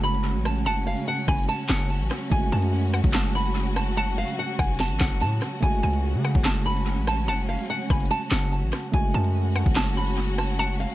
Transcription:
0.00 0.36 F#1 loud
0.00 2.28 C#3 medium
0.00 8.90 F#3 medium
0.00 2.29 G#3 medium
0.00 2.26 A3 medium
0.00 5.59 C#4 medium
0.00 2.28 F#4 medium
0.00 8.90 F#4 medium
0.00 0.62 F#5 medium
0.00 0.43 B5 medium
0.15 closed hi-hat medium
0.35 0.68 A1 loud
0.45 0.65 A5 medium
0.45 cross-stick loud
0.45 closed hi-hat medium
0.66 0.96 F#1 loud
0.66 0.85 F#5 medium
0.66 1.24 A5 loud
0.66 closed hi-hat medium
0.87 1.06 F5 medium
0.97 closed hi-hat medium
1.08 1.27 F#5 loud
1.28 1.48 F#1 loud
1.28 1.47 G#5 medium
1.28 2.28 B5 medium
1.28 kick medium
1.28 cross-stick medium
1.28 closed hi-hat soft
1.33 closed hi-hat soft
1.38 closed hi-hat medium
1.44 closed hi-hat medium
1.49 1.68 A5 loud
1.49 closed hi-hat medium
1.69 2.02 F#1 loud
1.69 1.89 F#5 medium
1.69 snare loud
1.69 clap loud
1.69 closed hi-hat medium
1.90 2.09 A5 medium
2.00 2.10 A1 loud
2.11 cross-stick loud
2.11 closed hi-hat medium
2.30 2.51 F#1 loud
2.30 10.95 C#3 medium
2.30 5.58 A3 medium
2.30 5.59 F#4 medium
2.30 3.10 G#5 loud
2.30 kick loud
2.30 closed hi-hat medium
2.34 5.60 G#3 medium
2.52 3.02 F#2 loud
2.52 2.91 A5 medium
2.52 closed hi-hat medium
2.62 closed hi-hat medium
2.93 3.93 F#5 medium
2.93 cross-stick loud
2.93 closed hi-hat medium
3.04 4.24 F#1 loud
3.04 kick loud
3.13 3.33 A5 medium
3.13 snare loud
3.13 clap loud
3.13 closed hi-hat medium
3.35 3.74 B5 medium
3.46 closed hi-hat medium
3.76 3.95 A5 medium
3.76 cross-stick loud
3.76 closed hi-hat medium
3.97 4.16 F#5 medium
3.97 4.56 A5 loud
3.97 closed hi-hat medium
4.18 4.37 F5 medium
4.28 closed hi-hat medium
4.39 4.58 F#5 medium
4.59 4.92 F1 loud
4.59 5.59 F#5 medium
4.59 4.78 G#5 medium
4.59 kick medium
4.59 cross-stick loud
4.59 closed hi-hat soft
4.64 closed hi-hat soft
4.70 closed hi-hat medium
4.75 closed hi-hat medium
4.80 4.99 A5 medium
4.80 snare medium
4.80 closed hi-hat medium
4.90 5.00 G#1 loud
5.00 5.23 F#1 loud
5.00 5.20 F#5 medium
5.00 kick medium
5.00 snare loud
5.00 clap medium
5.00 closed hi-hat medium
5.21 5.41 A2 loud
5.21 5.40 A5 medium
5.42 cross-stick medium
5.42 closed hi-hat medium
5.60 5.82 F#1 loud
5.60 8.89 A3 medium
5.60 8.90 C#4 medium
5.60 8.90 F#4 medium
5.60 6.41 G#5 loud
5.60 kick loud
5.60 closed hi-hat medium
5.65 8.91 G#3 medium
5.83 6.16 C#2 loud
5.83 6.22 G#5 medium
5.83 closed hi-hat medium
5.94 closed hi-hat medium
6.14 6.34 C#3 loud
6.24 7.24 F#5 medium
6.24 cross-stick medium
6.24 closed hi-hat medium
6.35 6.99 F#1 loud
6.35 kick loud
6.44 6.65 A5 medium
6.44 snare loud
6.44 clap loud
6.44 closed hi-hat medium
6.66 7.05 B5 medium
6.77 closed hi-hat medium
6.97 7.30 A1 loud
7.07 7.27 A5 medium
7.07 cross-stick loud
7.07 closed hi-hat medium
7.28 7.58 F#1 loud
7.28 7.47 F#5 medium
7.28 7.87 A5 loud
7.28 closed hi-hat medium
7.49 7.68 F5 medium
7.59 closed hi-hat medium
7.70 7.89 F#5 loud
7.90 8.10 F#1 loud
7.90 8.09 G#5 medium
7.90 8.90 B5 medium
7.90 kick medium
7.90 cross-stick medium
7.90 closed hi-hat soft
7.95 closed hi-hat soft
8.01 closed hi-hat medium
8.06 closed hi-hat medium
8.11 8.30 A5 loud
8.11 closed hi-hat medium
8.31 8.64 F#1 loud
8.31 8.51 F#5 medium
8.31 snare loud
8.31 clap medium
8.31 closed hi-hat medium
8.52 8.71 A5 medium
8.63 8.72 A1 loud
8.73 cross-stick loud
8.73 closed hi-hat medium
8.92 9.13 F#1 loud
8.92 10.95 F#3 medium
8.92 10.95 A3 medium
8.92 10.95 C#4 medium
8.92 10.95 F#4 loud
8.92 10.95 F#4 medium
8.92 9.72 G#5 loud
8.92 kick loud
8.92 closed hi-hat medium
8.96 10.95 G#3 medium
9.14 9.64 F#2 loud
9.14 9.53 A5 medium
9.14 closed hi-hat medium
9.25 closed hi-hat medium
9.55 10.55 F#5 medium
9.55 cross-stick loud
9.55 closed hi-hat medium
9.66 10.86 F#1 loud
9.66 kick loud
9.75 9.95 A5 medium
9.75 snare loud
9.75 clap loud
9.75 closed hi-hat medium
9.97 10.36 B5 medium
10.08 closed hi-hat medium
10.38 10.57 A5 medium
10.38 cross-stick loud
10.38 closed hi-hat medium
10.59 10.78 F#5 medium
10.59 10.95 A5 loud
10.59 closed hi-hat medium
10.80 10.95 F5 medium
10.90 closed hi-hat medium

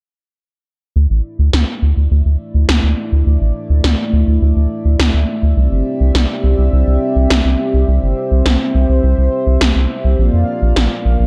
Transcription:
0.96 1.07 D2 medium
0.96 5.53 A3 medium
0.96 5.53 E4 medium
0.96 5.53 D5 medium
0.96 10.15 E5 medium
1.10 1.21 A1 medium
1.39 1.50 D2 medium
1.53 1.64 D2 loud
1.53 snare loud
1.82 1.93 D2 medium
1.97 2.08 D2 medium
2.11 2.22 D2 medium
2.25 2.36 D2 medium
2.54 2.65 D2 medium
2.69 2.80 D2 medium
2.69 snare loud
2.83 2.94 D2 medium
3.12 3.23 D2 medium
3.26 3.37 D2 medium
3.41 3.52 A1 medium
3.70 3.81 D2 medium
3.84 3.95 D2 loud
3.84 snare loud
4.13 4.24 D2 loud
4.27 4.38 D2 medium
4.42 4.53 D2 medium
4.56 4.67 D2 medium
4.85 4.96 D2 medium
4.99 5.10 D2 medium
4.99 snare loud
5.14 5.25 D2 medium
5.43 5.54 D2 medium
5.57 5.68 C2 medium
5.57 10.15 C4 medium
5.57 10.15 G4 medium
5.57 7.86 D5 medium
5.71 5.82 G1 medium
6.00 6.11 C2 medium
6.15 6.26 C2 loud
6.15 snare loud
6.44 6.55 C2 medium
6.58 6.69 C2 medium
6.73 6.84 C2 medium
6.87 6.98 C2 medium
7.16 7.27 C2 medium
7.30 7.41 C2 medium
7.30 snare loud
7.45 7.56 C2 medium
7.74 7.85 C2 medium
7.88 7.99 C2 medium
7.88 10.16 C5 medium
8.03 8.14 G1 medium
8.31 8.42 C2 medium
8.46 8.57 C2 loud
8.46 snare loud
8.75 8.86 C2 medium
8.89 9.00 C2 medium
9.04 9.14 C2 medium
9.18 9.29 C2 medium
9.47 9.58 C2 medium
9.61 9.72 C2 medium
9.61 snare loud
9.76 9.87 C2 medium
10.04 10.15 C2 medium
10.19 10.30 A#1 medium
10.19 11.27 A#3 medium
10.19 11.27 F4 medium
10.19 11.27 D5 medium
10.19 11.27 F5 medium
10.33 10.44 F2 medium
10.62 10.73 A#1 medium
10.76 10.88 A#1 loud
10.76 snare loud
11.05 11.16 A#1 medium
11.20 11.27 A#1 medium

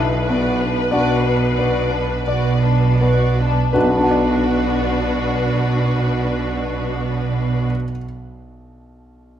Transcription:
0.00 0.75 B1 soft
0.00 3.71 B1 soft
0.00 0.76 B2 soft
0.00 0.28 D4 soft
0.00 0.87 E4 soft
0.00 0.28 B4 soft
0.00 2.99 B4 soft
0.00 0.87 E5 soft
0.28 0.59 B3 soft
0.28 1.31 B3 soft
0.28 0.59 F#4 soft
0.28 0.60 D5 soft
0.60 0.92 D4 soft
0.60 0.91 B4 soft
0.91 2.09 B1 soft
0.91 2.09 B2 soft
0.91 1.22 B3 soft
0.91 2.22 D4 soft
0.91 1.22 F#4 soft
0.91 1.99 F#4 soft
0.91 2.22 D5 soft
0.91 1.22 D5 soft
1.24 1.57 D4 soft
1.24 1.58 B4 soft
1.57 1.91 B3 soft
1.57 1.91 F#4 soft
1.57 2.70 B4 soft
1.57 1.91 D5 soft
1.89 2.25 D4 soft
1.89 2.26 B4 soft
2.25 3.56 B1 soft
2.25 3.57 B2 soft
2.25 2.59 B3 soft
2.25 2.59 F#4 soft
2.25 2.59 D5 soft
2.25 3.45 D5 soft
2.62 3.00 D4 soft
2.62 2.99 B4 soft
2.97 3.37 B3 soft
2.97 3.38 F#4 soft
2.97 3.36 D5 soft
3.01 3.71 B4 soft
3.37 3.76 D4 soft
3.37 3.72 B4 soft
3.73 7.67 B1 soft
3.73 7.69 B1 soft
3.73 7.69 B2 soft
3.73 7.66 D4 soft
3.73 3.95 D4 soft
3.73 4.02 F#4 soft
3.73 7.70 F#4 soft
3.73 7.66 B4 soft
3.73 7.67 B4 soft
3.82 7.76 B2 soft
3.89 7.83 B3 soft
3.97 7.90 D4 soft
4.04 7.97 F#4 soft
4.11 8.04 D5 soft

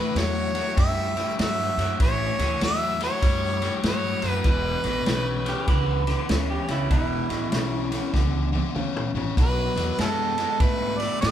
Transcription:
0.00 0.13 A2 medium
0.00 0.14 E3 medium
0.00 0.19 B4 medium
0.15 0.60 E2 medium
0.15 0.51 A2 medium
0.15 0.51 F#3 medium
0.15 0.78 C#5 medium
0.15 snare medium
0.15 ride medium
0.54 0.75 A2 medium
0.54 0.75 F#3 medium
0.54 snare soft
0.54 ride medium
0.76 1.22 F#2 medium
0.76 1.12 A2 medium
0.76 1.12 G3 medium
0.76 1.35 E5 medium
0.76 kick loud
0.76 snare soft
0.76 ride medium
1.16 1.36 A2 medium
1.16 1.37 G3 medium
1.16 snare soft
1.16 ride medium
1.39 1.68 G2 medium
1.39 1.74 A2 medium
1.39 1.74 F#3 loud
1.39 1.97 E5 medium
1.39 snare loud
1.39 ride medium
1.77 1.94 F#2 medium
1.77 1.98 A2 medium
1.77 1.98 F#3 medium
1.77 snare soft
1.77 ride medium
2.00 2.29 A1 medium
2.00 2.35 A2 medium
2.00 2.35 E3 medium
2.00 2.59 C#5 medium
2.00 kick loud
2.00 snare soft
2.00 ride medium
2.39 2.55 D2 medium
2.39 2.59 A2 medium
2.39 2.59 E3 medium
2.39 snare soft
2.39 ride medium
2.61 3.07 E2 medium
2.61 2.96 A2 medium
2.61 2.96 F#3 loud
2.61 2.99 E5 medium
2.61 snare loud
2.61 ride medium
3.00 3.20 A2 medium
3.00 3.20 F#3 medium
3.00 3.81 C#5 medium
3.00 snare soft
3.00 ride medium
3.22 3.67 F#2 medium
3.22 3.58 A2 medium
3.22 3.58 G3 medium
3.22 kick loud
3.22 snare soft
3.22 ride medium
3.62 3.82 A2 medium
3.62 3.82 G3 medium
3.62 snare soft
3.62 ride medium
3.83 4.12 G2 medium
3.83 4.19 A2 medium
3.83 4.19 F#3 medium
3.83 4.30 C#5 medium
3.83 snare loud
3.83 ride medium
4.22 4.39 F#2 medium
4.22 4.42 A2 medium
4.22 4.43 F#3 medium
4.22 snare soft
4.22 ride medium
4.30 4.50 B4 medium
4.44 4.74 E1 loud
4.44 4.80 E2 medium
4.44 4.81 B2 medium
4.44 kick loud
4.44 snare soft
4.44 ride medium
4.50 5.70 B4 medium
4.84 5.01 A1 medium
4.84 5.04 E2 medium
4.84 5.04 B2 medium
4.84 snare soft
4.84 ride medium
5.06 5.52 B1 medium
5.06 5.42 E2 medium
5.06 5.42 C#3 loud
5.06 snare loud
5.06 ride medium
5.44 5.65 E2 medium
5.44 5.66 C#3 medium
5.44 snare soft
5.44 ride medium
5.49 5.68 G4 medium
5.67 6.13 C#2 medium
5.67 6.03 E2 medium
5.67 6.03 D3 medium
5.67 6.48 B4 medium
5.67 kick loud
5.67 snare soft
5.67 ride medium
6.07 6.27 E2 medium
6.07 6.27 D3 medium
6.07 snare soft
6.07 ride medium
6.29 6.58 D2 medium
6.29 6.65 E2 medium
6.29 6.65 C#3 medium
6.29 snare loud
6.29 ride medium
6.50 6.70 G4 medium
6.68 6.85 C#2 medium
6.68 6.88 E2 medium
6.68 6.89 C#3 medium
6.68 6.90 E4 medium
6.68 snare soft
6.68 ride medium
6.90 7.19 E1 medium
6.90 7.26 E2 medium
6.90 7.26 B2 medium
6.90 8.11 E4 loud
6.90 kick loud
6.90 snare soft
6.90 ride medium
7.29 7.46 A1 medium
7.29 7.50 E2 medium
7.29 7.50 B2 medium
7.29 snare soft
7.29 ride medium
7.52 7.97 B1 medium
7.52 7.87 E2 medium
7.52 7.88 C#3 loud
7.52 snare medium
7.52 ride medium
7.91 8.11 E2 medium
7.91 8.12 C#3 medium
7.91 snare soft
7.91 ride medium
8.13 8.59 C#2 medium
8.13 8.49 E2 medium
8.13 8.49 D3 medium
8.13 kick loud
8.13 snare medium
8.52 8.73 E2 medium
8.52 8.73 D3 medium
8.52 high tom medium
8.75 9.04 D2 medium
8.75 9.10 E2 medium
8.75 9.11 C#3 loud
8.75 mid tom medium
8.97 mid tom medium
9.14 9.31 A1 medium
9.14 9.35 E2 medium
9.14 9.35 C#3 medium
9.14 floor tom medium
9.37 9.66 B1 medium
9.37 9.72 B2 medium
9.37 9.73 F#3 medium
9.37 9.96 B4 medium
9.37 kick loud
9.37 snare soft
9.37 ride medium
9.76 9.92 E2 medium
9.76 9.96 B2 medium
9.76 9.97 F#3 medium
9.76 snare soft
9.76 ride medium
9.98 10.44 F#2 medium
9.98 10.34 B2 medium
9.98 10.34 G#3 medium
9.98 10.07 C#4 medium
9.98 10.09 E4 medium
9.98 10.63 A4 medium
9.98 snare medium
9.98 ride medium
10.38 10.58 B2 medium
10.38 10.58 G#3 medium
10.38 snare soft
10.38 ride medium
10.60 11.05 G#2 medium
10.60 10.96 B2 medium
10.60 10.96 A3 medium
10.60 11.00 B4 medium
10.60 kick loud
10.60 snare soft
10.60 ride medium
10.99 11.19 B2 medium
10.99 11.19 A3 medium
10.99 11.20 D5 medium
10.99 snare soft
10.99 ride soft
11.21 11.31 A2 medium
11.21 11.31 B2 medium
11.21 11.31 G#3 medium
11.21 11.31 D#5 loud
11.21 snare loud
11.21 ride medium

